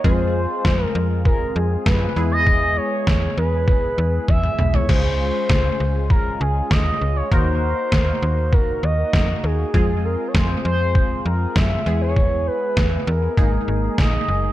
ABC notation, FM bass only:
X:1
M:4/4
L:1/16
Q:1/4=99
K:Fphr
V:1 name="FM bass" clef=bass
F,,4 F,,2 F,,3 z F,,2 G,,2 =E,,2- | =E,,4 E,,2 E,,3 z E,,2 E,,2 =B,,,2 | D,,4 D,,2 D,,3 z D,,2 E,,2 D,,2 | E,,4 E,,2 E,,3 z E,,2 F,,2 E,,2 |
F,,4 F,,2 F,,3 z F,,2 G,,2 =E,,2- | =E,,4 E,,2 E,,2 A,,,2 A,,,2 B,,,2 G,,,2 |]